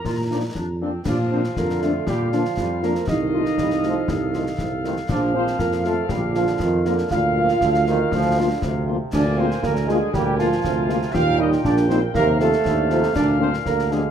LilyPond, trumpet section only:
\new Staff \with { instrumentName = "Trumpet section" } { \time 2/4 \key bes \major \tempo 4 = 119 bes'4. r8 | d''8 c''8 bes'8 a'8 | g'8 f'4 bes'8 | ees''2~ |
ees''4. r8 | d''8 c''8 bes'8 a'8 | g'8 f'4 bes'8 | f''2~ |
f''4. r8 | \key bes \mixolydian d''8 c''8 bes'8 aes'8 | g'8 f'4. | f''8 ees''8 d''8 c''8 |
bes'8 a'4. | d''8 c''8 bes'8 aes'8 | }